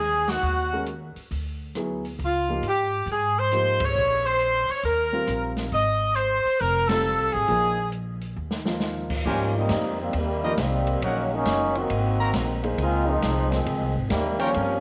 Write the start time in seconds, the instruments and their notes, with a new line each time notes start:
Already playing: upright bass D#2, saxophone section G#4
0.28 saxophone section F#4, snare, open hi-hat
0.42 upright bass D#2, open hi-hat
0.73 grand piano G#3 C#4 F#4 A#4
0.86 closed hi-hat
1.16 muted upright bass stroke, open hi-hat
1.31 upright bass D2, open hi-hat
1.75 grand piano F#3 B3 E4 G#4, cross-stick, closed hi-hat
2.05 open hi-hat
2.19 upright bass C#2, open hi-hat
2.25 saxophone section F4
2.49 grand piano F3 A#3 D#4 G4
2.63 upright bass G#2, closed hi-hat
2.68 saxophone section G4
3.06 upright bass G#2, open hi-hat
3.12 saxophone section G#4
3.39 saxophone section C5
3.51 grand piano F3 A#3 D#4 G4, cross-stick, closed hi-hat
3.80 kick, ride
3.84 saxophone section C#5
3.95 upright bass A#1
4.26 saxophone section C5
4.39 closed hi-hat
4.68 saxophone section C#5, muted upright bass stroke, open hi-hat
4.83 upright bass D#2, saxophone section A#4, open hi-hat
5.12 grand piano G3 C4 F4 A#4
5.27 upright bass A#1, cross-stick, closed hi-hat
5.56 snare, open hi-hat
5.72 upright bass G#1, saxophone section D#5, open hi-hat
6.14 saxophone section C5, closed hi-hat
6.45 muted upright bass stroke, open hi-hat
6.59 upright bass F1, saxophone section A#4, open hi-hat
6.87 grand piano G3 C4 F4 A4, saxophone section A4, snare, ride
7.19 upright bass C2
7.32 upright bass A1, saxophone section G#4
7.48 upright bass A#1, grand piano F3 A#3 D#4 G#4, open hi-hat
7.92 closed hi-hat
8.21 open hi-hat
8.36 upright bass D#2
8.51 snare
8.65 grand piano F3 A#3 D#4 F4, snare
8.80 snare
9.10 kick, crash
9.25 upright bass G#2, grand piano F3 A#3 D#4 G4, trombone section G3 A#3 C#4 F4, trumpet section G4 A#4 C5 G#5
9.57 trombone section G3 A#3 C4 D#4
9.69 upright bass F2, snare, hi-hat pedal, ride
10.01 trombone section D#3 G3 A#3 C4
10.13 upright bass D#2, trombone section D#3, ride
10.17 trombone section C3 G3 A#3
10.43 grand piano F3 A#3 D#4 G4, trumpet section G4 A#4 C5 D#5
10.57 upright bass C2, trombone section D#3 G3 A#3 C4, snare, hi-hat pedal, ride
10.87 ride
11.01 upright bass A#1, trombone section D#3 F#3 A#3 C#4, trumpet section D#4 A#4 C#5 F#5, ride
11.34 trombone section F#3 A#3 C#4 D#4
11.45 upright bass F#1, snare, hi-hat pedal, ride
11.75 trombone section D#3 A#3 C4 F#4, ride
11.90 upright bass G#1, ride
12.20 trumpet section F#4 A#4 C5 A#5
12.33 upright bass A#1, snare, hi-hat pedal, ride
12.63 grand piano A#3 D#4 G#4 C5, ride
12.78 upright bass C#2, trombone section G#3 C4 D#4 F4, ride
13.08 trombone section F3 G#3 C4 D#4
13.22 upright bass C2, snare, hi-hat pedal, ride
13.52 trombone section D#3 F3 G#3 C4, snare, ride
13.66 upright bass C#2, ride
13.81 upright bass C2
13.96 upright bass G#1
14.09 upright bass D#2, trombone section C3 D#3 G3 A#3, snare, hi-hat pedal, ride
14.39 trombone section F3 G3 A#3 C#4, trumpet section F4 A#4 C#5 G5, ride
14.54 upright bass G2, grand piano G3 C4 F4 A#4, ride